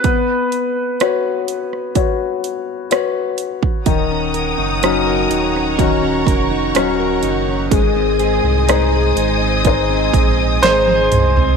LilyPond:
<<
  \new Staff \with { instrumentName = "String section" } { \time 4/4 \key ees \dorian \tempo 4 = 62 << { r1 | ees'''2 des'''2 | ees'''1 | } \\ { r1 | <des'' ges'' bes''>1 | <c'' ees'' aes''>1 | } >> }
  \new Staff \with { instrumentName = "Grand piano" } { \time 4/4 \key ees \dorian ces''2.~ ces''8 r8 | r1 | r2. c''4 | }
  \new Staff \with { instrumentName = "Felt piano" } { \time 4/4 \key ees \dorian ces'4 <ges' ces'' des''>4 <ges' ces'' des''>4 <ges' ces'' des''>4 | ees4 <des' ees' ges'>4 <des' ees' ges'>4 <des' ees' ges'>4 | aes4 <ees' aes' c''>4 <ees' aes' c''>4 <ees' aes' c''>4 | }
  \new Staff \with { instrumentName = "Steel-string acoustic guitar" } { \time 4/4 \key ees \dorian r1 | ees16 des'16 bes'16 ees'16 ges16 bes'16 ees'16 des'16 ees16 des'16 bes'16 ees'16 ges16 bes'16 ees'16 des'16 | aes,16 c'16 aes'16 ees'16 aes16 aes'16 ees'16 c'16 aes,16 c'16 aes'16 ees'16 aes16 aes'16 ees'16 c'16 | }
  \new Staff \with { instrumentName = "Sub bass" } { \clef bass \time 4/4 \key ees \dorian r1 | ees,,8. ges,,8. ees,,4 f,,8 ees,,8 ges,,8 | aes,,8. c,8. aes,,4 bes,,8 aes,,8 c,8 | }
  \new DrumStaff \with { instrumentName = "Drums" } \drummode { \time 4/4 <hh bd>8 hh8 <hh ss>8 hh16 ss16 <hh bd>8 hh8 <hh ss>8 hh16 bd16 | <hh bd>8 hh8 <hh ss>8 hh16 ss16 <hh bd>8 <hh bd>8 <hh ss>8 hh8 | <hh bd>8 hh8 <hh ss>8 hh8 <hh bd>8 <hh bd>8 <hh sn>16 tommh16 <hh toml>16 tomfh16 | }
>>